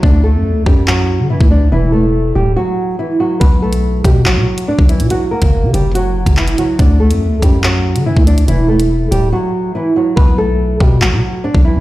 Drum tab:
HH |----------------|----------------|x--x--x----x--xx|x--x--x-x--x-xx-|
CP |--------x-------|----------------|--------x-------|------------x---|
BD |o-----o------o--|----------------|o-----o------o--|---o-------o----|

HH |x--x--x----x--xx|x--x--x---------|----------------|
CP |--------x-------|----------------|--------x-------|
BD |o-----o------o--|----------------|o-----o------o--|